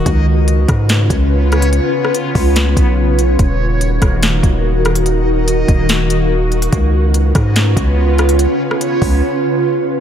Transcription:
<<
  \new Staff \with { instrumentName = "Synth texture" } { \time 4/4 \key des \mixolydian \tempo 4 = 144 <ces' f' des''>1~ | <ces' f' des''>1 | <bes ges' ees''>1~ | <bes ges' ees''>1 |
<ces' f' des''>1~ | <ces' f' des''>1 | }
  \new Staff \with { instrumentName = "Ambient pad" } { \time 4/4 \key des \mixolydian <des des' f' ces''>1~ | <des des' f' ces''>1 | <ees ees' ges' bes'>1~ | <ees ees' ges' bes'>1 |
<des des' f' ces''>1~ | <des des' f' ces''>1 | }
  \new Staff \with { instrumentName = "808-style bass" } { \clef bass \time 4/4 \key des \mixolydian des,4. aes,4 des,4.~ | des,16 r4 r16 des,4 ces,4. | ees,,4. ees,,4 ees,,4.~ | ees,,4. ees,,2~ ees,,8 |
des,4. aes,4 des,4.~ | des,16 r4 r16 des,8 r2 | }
  \new DrumStaff \with { instrumentName = "Drums" } \drummode { \time 4/4 <hh bd>4 hh8 <hh bd ss>8 <hh sn>8 <hh bd>8 r8 <hh ss>16 hh16 | hh8. ss16 hh8 <hho bd>8 <hh sn>8 <hh bd>8 r8 hh8 | <hh bd>4 hh8 <hh bd ss>8 <hh sn>8 <hh bd>8 r8 <hh ss>16 hh16 | hh4 hh8 <hh bd>8 <hh sn>8 hh8 r8 hh16 hh16 |
<hh bd>4 hh8 <hh bd ss>8 <hh sn>8 <hh bd>8 r8 <hh ss>16 hh16 | hh8. ss16 hh8 <hho bd>8 r4 r4 | }
>>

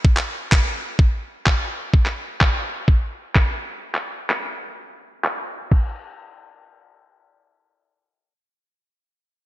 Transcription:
\new DrumStaff \with { instrumentName = "Drums" } \drummode { \time 4/4 \tempo 4 = 127 bd16 hc8. <hc bd>4 bd4 <hc bd>4 | bd16 hc8. <hc bd>4 bd4 <hc bd>4 | r16 hc8. hc4 r4 hc4 | <cymc bd>4 r4 r4 r4 |
r4 r4 r4 r4 | }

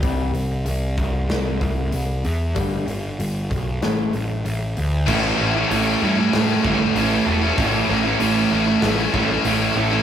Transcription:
<<
  \new Staff \with { instrumentName = "Distorted electric guitar" } { \time 4/4 \key a \mixolydian \tempo 4 = 96 r1 | r1 | <a, e a cis' e'>8 <e a cis' e'>8 <a, e a cis' e'>16 <a cis' e'>16 <e a cis' e'>16 <a cis' e'>8 <a cis' e'>16 <e a cis' e'>8 <a, e a cis' e'>16 <a cis' e'>8 <a cis' e'>16 | <a, e a cis' e'>8 <e a cis' e'>8 <a, e a cis' e'>16 <a cis' e'>16 <e a cis' e'>16 <a cis' e'>8 <a cis' e'>16 <e a cis' e'>8 <a, e a cis' e'>16 <a cis' e'>8 <a cis' e'>16 | }
  \new Staff \with { instrumentName = "Overdriven electric guitar" } { \time 4/4 \key a \mixolydian r1 | r1 | <a, e a cis' e'>8. <a cis' e'>16 <a, e a cis' e'>8 <e a cis' e'>8. r16 <e a cis' e'>8 <a, e a cis' e'>8 <e a cis' e'>16 <a cis' e'>16 | <a, e a cis' e'>8. <a cis' e'>16 <a, e a cis' e'>8 <e a cis' e'>8. r16 <e a cis' e'>8 <a, e a cis' e'>8 <e a cis' e'>16 <a cis' e'>16 | }
  \new Staff \with { instrumentName = "Overdriven electric guitar" } { \clef bass \time 4/4 \key a \mixolydian r1 | r1 | <a, e a>8 <a, e a>8 <a, e a>8 <a, e a>8 <a, e a>8 <a, e a>8 <a, e a>8 <a, e a>8 | <a, e a>8 <a, e a>8 <a, e a>8 <a, e a>8 <a, e a>8 <a, e a>8 <a, e a>8 <a, e a>8 | }
  \new Staff \with { instrumentName = "Steel-string acoustic guitar" } { \clef bass \time 4/4 \key a \mixolydian <c e g>8 <c e>8 <c e>8 <c e>8 <c e>8 <c e>8 <c e>8 <c e>8 | <g, d g>8 <g, d>8 <g, d>8 <g, d>8 <a, e a>8 <a, e>8 <a, e>8 <a, e>8 | r1 | r1 | }
  \new Staff \with { instrumentName = "Picked electric bass" } { \clef bass \time 4/4 \key a \mixolydian c,8 c,8 c,8 c,8 c,8 c,8 c,8 e,8 | g,,8 g,,8 g,,8 b,,8 a,,8 a,,8 a,,8 d,8 | a,,8 a,,8 a,,8 g,8 a,8 g,,8 a,,8 e,,8 | a,,8 a,,8 a,,8 a,,8 a,,8 a,,8 a,,8 a,,8 | }
  \new DrumStaff \with { instrumentName = "Drums" } \drummode { \time 4/4 <hho bd>8 hho8 hho8 <hho bd>8 <hho sn>8 <hho bd>8 hho8 hho8 | <hho bd>8 hho8 hho8 <hho bd>8 <hho sn>8 hho8 hho8 hho8 | <cymc bd>4 hho4 <hho sn>8 bd8 hho4 | <hho bd>4 hho4 <hho sn>8 bd8 hho4 | }
>>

